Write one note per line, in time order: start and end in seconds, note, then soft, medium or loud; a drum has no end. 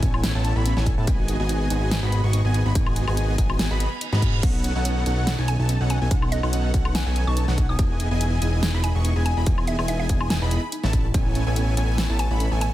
0.02 0.33 A1 loud
0.02 0.32 B3 loud
0.02 0.10 C#4 medium
0.02 0.32 E4 medium
0.02 0.32 A4 medium
0.02 0.32 C#5 medium
0.02 0.32 G#5 loud
0.02 kick medium
0.02 closed hi-hat medium
0.14 0.18 E4 medium
0.14 high woodblock medium
0.24 0.29 C#4 loud
0.24 snare loud
0.24 closed hi-hat medium
0.35 0.54 A1 loud
0.35 0.54 B3 loud
0.35 0.54 E4 medium
0.35 0.38 E4 loud
0.35 0.54 A4 medium
0.35 0.54 C#5 medium
0.35 0.54 A5 loud
0.45 0.50 C#4 medium
0.45 closed hi-hat medium
0.56 0.74 A1 loud
0.56 0.74 B3 medium
0.56 0.58 E4 medium
0.56 0.74 E4 medium
0.56 0.74 A4 medium
0.56 0.74 C#5 medium
0.56 0.74 B5 loud
0.56 0.74 B5 medium
0.66 0.71 C#4 loud
0.66 closed hi-hat medium
0.77 0.96 A1 loud
0.77 0.95 B3 medium
0.77 0.95 E4 medium
0.77 0.95 A4 medium
0.77 0.81 B4 medium
0.77 0.95 C#5 medium
0.77 0.95 G#5 loud
0.77 snare soft
0.86 0.93 C#4 medium
0.86 kick medium
0.86 closed hi-hat medium
0.98 1.09 A2 loud
0.98 1.05 B3 loud
0.98 1.05 E4 medium
0.98 1.02 E4 medium
0.98 1.05 A4 medium
0.98 1.05 C#5 medium
0.98 1.05 A5 loud
1.07 1.37 G#1 medium
1.07 1.37 B3 medium
1.07 1.13 D#4 loud
1.07 1.37 F#4 medium
1.07 1.37 G#4 medium
1.07 1.37 D#5 medium
1.07 1.37 G#5 medium
1.07 kick loud
1.07 closed hi-hat medium
1.19 1.21 F#4 loud
1.28 1.34 D#4 medium
1.28 closed hi-hat medium
1.40 1.68 G#1 loud
1.40 1.68 B3 loud
1.40 1.68 F#4 medium
1.40 1.42 F#4 medium
1.40 1.68 G#4 medium
1.40 1.68 D#5 medium
1.40 1.68 G#5 loud
1.49 1.54 D#4 loud
1.49 closed hi-hat medium
1.61 1.65 D#5 medium
1.70 2.00 G#1 loud
1.70 2.00 B3 loud
1.70 1.77 D#4 medium
1.70 2.00 F#4 medium
1.70 2.00 G#4 medium
1.70 2.00 D#5 medium
1.70 2.00 G#5 loud
1.70 closed hi-hat medium
1.82 1.86 F#4 medium
1.91 1.96 D#4 loud
1.91 snare loud
1.91 closed hi-hat medium
2.02 2.21 G#1 loud
2.02 2.21 B3 loud
2.02 2.21 F#4 medium
2.02 2.05 F#4 loud
2.02 2.21 G#4 medium
2.02 2.21 D#5 medium
2.02 2.21 B5 loud
2.12 2.18 D#4 medium
2.12 closed hi-hat medium
2.23 2.42 G#1 loud
2.23 2.42 B3 medium
2.23 2.42 F#4 medium
2.23 2.26 F#4 medium
2.23 2.42 G#4 medium
2.23 2.42 D#5 medium
2.23 2.42 C#6 medium
2.23 2.42 C#6 loud
2.33 2.38 D#4 loud
2.33 closed hi-hat medium
2.45 2.63 G#1 loud
2.45 2.63 B3 medium
2.45 2.63 F#4 medium
2.45 2.63 G#4 medium
2.45 2.63 D#5 medium
2.45 2.49 D#5 medium
2.45 2.63 G#5 loud
2.54 2.62 D#4 medium
2.54 closed hi-hat medium
2.65 2.73 G#1 loud
2.65 2.73 B3 loud
2.65 2.73 F#4 medium
2.65 2.70 F#4 medium
2.65 2.73 G#4 medium
2.65 2.73 D#5 loud
2.65 2.73 B5 loud
2.75 3.05 G#1 loud
2.75 3.05 B3 medium
2.75 2.80 D#4 loud
2.75 3.05 F#4 medium
2.75 3.05 G#4 medium
2.75 3.05 D#5 medium
2.75 3.05 G#5 medium
2.75 kick loud
2.75 closed hi-hat medium
2.86 2.89 F#4 loud
2.86 high woodblock medium
2.96 3.01 D#4 medium
2.96 closed hi-hat medium
3.07 3.36 G#1 loud
3.07 3.36 B3 loud
3.07 3.36 F#4 loud
3.07 3.10 F#4 medium
3.07 3.36 G#4 medium
3.07 3.36 D#5 medium
3.07 3.36 G#5 loud
3.07 high woodblock medium
3.17 3.22 D#4 loud
3.17 closed hi-hat medium
3.29 3.33 D#5 medium
3.38 3.68 G#1 loud
3.38 3.68 B3 loud
3.38 3.68 F#4 medium
3.38 3.68 G#4 medium
3.38 3.68 D#5 medium
3.38 3.68 G#5 loud
3.38 kick medium
3.38 closed hi-hat medium
3.50 3.54 F#4 medium
3.50 high woodblock medium
3.59 3.64 D#4 loud
3.59 snare loud
3.59 closed hi-hat medium
3.59 reverse cymbal medium
3.70 3.87 G#1 loud
3.70 3.89 B3 loud
3.70 3.73 F#4 loud
3.70 3.89 F#4 medium
3.70 3.89 G#4 medium
3.70 3.89 D#5 medium
3.70 3.89 B5 loud
3.80 3.85 D#5 medium
3.80 closed hi-hat medium
3.91 3.98 B4 medium
4.01 4.06 D#5 medium
4.01 closed hi-hat medium
4.12 4.41 G#2 loud
4.12 4.35 B3 medium
4.12 4.35 F#4 medium
4.12 4.17 G#4 loud
4.12 4.35 G#4 medium
4.12 4.35 D#5 medium
4.12 4.35 B5 medium
4.12 snare soft
4.22 4.27 F#4 medium
4.22 kick medium
4.22 closed hi-hat medium
4.33 4.38 B4 medium
4.43 4.73 B1 loud
4.43 4.73 B3 medium
4.43 4.48 C#4 loud
4.43 4.73 D#4 medium
4.43 4.73 A4 medium
4.43 4.73 C#5 medium
4.43 4.73 F#5 medium
4.43 kick loud
4.43 closed hi-hat medium
4.43 crash medium
4.54 4.57 D#4 loud
4.64 4.69 C#4 medium
4.64 closed hi-hat medium
4.75 5.04 B1 loud
4.75 5.04 B3 loud
4.75 5.04 D#4 medium
4.75 4.78 D#4 medium
4.75 5.04 A4 loud
4.75 5.04 C#5 medium
4.75 5.04 F#5 loud
4.85 4.90 C#4 loud
4.85 closed hi-hat medium
4.96 5.01 B4 medium
5.06 5.36 B1 loud
5.06 5.36 B3 medium
5.06 5.13 C#4 medium
5.06 5.36 D#4 medium
5.06 5.36 A4 medium
5.06 5.36 C#5 medium
5.06 5.36 F#5 loud
5.06 closed hi-hat medium
5.17 5.22 D#4 medium
5.27 5.32 C#4 loud
5.27 snare loud
5.27 closed hi-hat medium
5.38 5.57 B1 loud
5.38 5.57 B3 loud
5.38 5.41 D#4 loud
5.38 5.57 D#4 medium
5.38 5.57 A4 medium
5.38 5.57 C#5 medium
5.38 5.57 G#5 loud
5.48 5.53 C#4 medium
5.48 5.64 G#5 medium
5.48 closed hi-hat medium
5.59 5.78 B1 loud
5.59 5.78 B3 medium
5.59 5.62 D#4 medium
5.59 5.78 D#4 medium
5.59 5.78 A4 medium
5.59 5.78 C#5 medium
5.59 5.78 A5 medium
5.69 5.74 C#4 loud
5.69 closed hi-hat medium
5.80 5.99 B1 loud
5.80 5.99 B3 medium
5.80 5.99 D#4 medium
5.80 5.99 A4 medium
5.80 5.85 B4 medium
5.80 5.99 C#5 medium
5.80 5.99 F#5 loud
5.90 5.97 C#4 medium
5.90 6.06 G#5 medium
5.90 closed hi-hat medium
6.01 6.09 B1 loud
6.01 6.09 B3 loud
6.01 6.06 D#4 medium
6.01 6.09 D#4 medium
6.01 6.09 A4 medium
6.01 6.09 C#5 medium
6.01 6.09 G#5 loud
6.11 6.41 B1 loud
6.11 6.41 B3 medium
6.11 6.16 C#4 loud
6.11 6.41 D#4 medium
6.11 6.41 A4 medium
6.11 6.41 C#5 medium
6.11 6.41 F#5 medium
6.11 kick loud
6.11 closed hi-hat medium
6.22 6.25 D#4 loud
6.22 high woodblock medium
6.32 6.37 C#4 medium
6.32 6.91 D#5 medium
6.32 closed hi-hat medium
6.43 6.72 B1 loud
6.43 6.72 B3 loud
6.43 6.46 D#4 medium
6.43 6.72 D#4 medium
6.43 6.72 A4 medium
6.43 6.72 C#5 medium
6.43 6.72 F#5 loud
6.43 high woodblock medium
6.53 6.58 C#4 loud
6.53 closed hi-hat medium
6.64 6.69 B4 medium
6.74 7.04 B1 loud
6.74 7.04 B3 loud
6.74 6.81 C#4 medium
6.74 7.04 D#4 medium
6.74 7.04 A4 medium
6.74 7.04 C#5 medium
6.74 7.03 F#5 loud
6.74 7.04 F#5 loud
6.74 kick medium
6.74 closed hi-hat medium
6.85 6.90 D#4 medium
6.85 high woodblock medium
6.95 7.00 C#4 loud
6.95 7.25 G#5 medium
6.95 snare loud
6.95 closed hi-hat medium
7.06 7.25 B1 loud
7.06 7.25 B3 loud
7.06 7.09 D#4 loud
7.06 7.25 D#4 medium
7.06 7.25 A4 medium
7.06 7.25 C#5 medium
7.06 7.25 G#5 loud
7.16 7.21 C#4 medium
7.16 closed hi-hat medium
7.27 7.46 B1 loud
7.27 7.46 B3 medium
7.27 7.30 D#4 medium
7.27 7.46 D#4 medium
7.27 7.46 A4 medium
7.27 7.46 C#5 medium
7.27 7.45 A5 medium
7.27 7.42 C#6 medium
7.37 7.42 C#4 loud
7.37 closed hi-hat medium
7.48 7.67 B1 loud
7.48 7.66 B3 medium
7.48 7.66 D#4 medium
7.48 7.66 A4 medium
7.48 7.52 B4 medium
7.48 7.66 C#5 medium
7.48 7.66 F#5 loud
7.48 7.67 F#5 loud
7.48 snare soft
7.58 7.65 C#4 medium
7.58 kick medium
7.58 closed hi-hat medium
7.69 7.77 B1 medium
7.69 7.77 B3 loud
7.69 7.76 D#4 medium
7.69 7.73 D#4 medium
7.69 7.76 A4 medium
7.69 7.76 C#5 medium
7.69 7.76 G#5 loud
7.69 7.83 D#6 medium
7.79 8.09 E1 loud
7.79 8.08 B3 medium
7.79 8.08 E4 medium
7.79 8.08 G#4 medium
7.79 8.08 D#5 medium
7.79 8.08 G#5 medium
7.79 kick loud
7.79 closed hi-hat medium
7.90 7.93 E4 loud
8.00 8.05 D#4 medium
8.00 closed hi-hat medium
8.11 8.40 E1 loud
8.11 8.39 B3 loud
8.11 8.14 E4 medium
8.11 8.39 E4 medium
8.11 8.39 G#4 medium
8.11 8.39 D#5 loud
8.11 8.39 G#5 loud
8.21 8.26 D#4 loud
8.21 closed hi-hat medium
8.32 8.36 D#5 medium
8.41 8.72 E1 loud
8.41 8.71 B3 loud
8.41 8.49 D#4 medium
8.41 8.71 E4 medium
8.41 8.71 G#4 medium
8.41 8.71 D#5 medium
8.41 8.71 G#5 loud
8.41 closed hi-hat medium
8.53 8.57 E4 medium
8.63 8.68 D#4 loud
8.63 snare loud
8.63 closed hi-hat medium
8.74 8.93 E1 loud
8.74 8.93 B3 loud
8.74 8.93 E4 medium
8.74 8.77 E4 loud
8.74 8.93 G#4 medium
8.74 8.93 D#5 medium
8.74 8.93 B5 loud
8.84 8.89 D#4 medium
8.84 9.00 G#5 medium
8.84 closed hi-hat medium
8.95 9.14 E1 loud
8.95 9.13 B3 medium
8.95 9.13 E4 medium
8.95 8.98 E4 medium
8.95 9.13 G#4 medium
8.95 9.13 D#5 medium
8.95 9.13 C#6 medium
9.05 9.10 D#4 loud
9.05 closed hi-hat medium
9.16 9.35 E1 loud
9.16 9.34 B3 medium
9.16 9.34 E4 medium
9.16 9.34 G#4 medium
9.16 9.34 D#5 medium
9.16 9.20 D#5 medium
9.16 9.34 G#5 loud
9.26 9.33 D#4 medium
9.26 9.42 G#5 medium
9.26 closed hi-hat medium
9.37 9.45 E1 medium
9.37 9.44 B3 loud
9.37 9.44 E4 medium
9.37 9.41 E4 medium
9.37 9.44 G#4 medium
9.37 9.44 D#5 medium
9.37 9.44 B5 loud
9.46 9.77 E1 loud
9.46 9.76 B3 medium
9.46 9.52 D#4 loud
9.46 9.76 E4 medium
9.46 9.76 G#4 medium
9.46 9.76 D#5 medium
9.46 9.76 G#5 medium
9.46 kick loud
9.46 closed hi-hat medium
9.58 9.60 E4 loud
9.58 high woodblock medium
9.67 9.73 D#4 medium
9.67 9.87 E5 medium
9.67 closed hi-hat medium
9.79 10.08 E1 loud
9.79 10.07 B3 loud
9.79 10.07 E4 loud
9.79 9.82 E4 medium
9.79 10.07 G#4 medium
9.79 10.07 D#5 medium
9.79 10.07 G#5 loud
9.79 high woodblock medium
9.88 9.94 D#4 loud
9.88 9.96 E5 medium
9.88 closed hi-hat medium
9.99 10.04 D#5 medium
9.99 10.06 E5 medium
10.09 10.40 E1 loud
10.09 10.39 B3 loud
10.09 10.17 D#4 medium
10.09 10.39 E4 medium
10.09 10.39 G#4 medium
10.09 10.39 D#5 medium
10.09 10.39 G#5 loud
10.09 kick medium
10.09 closed hi-hat medium
10.21 10.25 E4 medium
10.21 10.27 G#5 medium
10.21 high woodblock medium
10.30 10.36 D#4 loud
10.30 10.38 G#5 medium
10.30 snare loud
10.30 closed hi-hat medium
10.42 10.58 E1 loud
10.42 10.61 B3 loud
10.42 10.44 E4 loud
10.42 10.61 E4 medium
10.42 10.61 G#4 medium
10.42 10.61 D#5 medium
10.42 10.61 B5 loud
10.51 10.57 D#4 medium
10.51 closed hi-hat medium
10.63 10.65 E4 medium
10.72 10.78 D#4 loud
10.72 closed hi-hat medium
10.84 11.12 A1 loud
10.84 11.06 B3 medium
10.84 11.06 E4 medium
10.84 11.06 A4 medium
10.84 11.06 C#5 medium
10.84 11.06 A5 medium
10.84 snare soft
10.93 11.01 C#4 medium
10.93 kick medium
10.93 closed hi-hat medium
11.05 11.09 E4 medium
11.14 11.44 A1 loud
11.14 11.44 B3 medium
11.14 11.20 C#4 loud
11.14 11.44 E4 medium
11.14 11.44 A4 medium
11.14 11.44 C#5 medium
11.14 11.44 G#5 medium
11.14 kick loud
11.14 closed hi-hat medium
11.26 11.28 E4 loud
11.35 11.40 C#4 medium
11.35 closed hi-hat medium
11.46 11.75 A1 loud
11.46 11.75 B3 loud
11.46 11.75 E4 loud
11.46 11.75 A4 medium
11.46 11.75 C#5 medium
11.46 11.75 G#5 loud
11.56 11.61 C#4 loud
11.56 closed hi-hat medium
11.68 11.72 B4 medium
11.77 12.07 A1 loud
11.77 12.07 B3 loud
11.77 11.84 C#4 medium
11.77 12.07 E4 medium
11.77 12.07 A4 medium
11.77 12.07 C#5 medium
11.77 12.07 G#5 loud
11.77 closed hi-hat medium
11.89 11.91 E4 medium
11.98 12.03 C#4 loud
11.98 snare loud
11.98 closed hi-hat medium
12.09 12.28 A1 loud
12.09 12.28 B3 loud
12.09 12.28 E4 medium
12.09 12.12 E4 loud
12.09 12.28 A4 medium
12.09 12.28 C#5 medium
12.09 12.28 A5 loud
12.19 12.24 C#4 medium
12.19 12.35 G#5 medium
12.19 closed hi-hat medium
12.30 12.49 A1 loud
12.30 12.49 B3 medium
12.30 12.49 E4 medium
12.30 12.33 E4 medium
12.30 12.49 A4 medium
12.30 12.49 C#5 medium
12.30 12.49 B5 loud
12.40 12.45 C#4 loud
12.40 closed hi-hat medium
12.51 12.70 A1 loud
12.51 12.70 B3 medium
12.51 12.70 E4 medium
12.51 12.70 A4 medium
12.51 12.56 B4 medium
12.51 12.70 C#5 medium
12.51 12.70 G#5 loud
12.61 12.68 C#4 medium
12.61 12.73 G#5 medium
12.61 closed hi-hat medium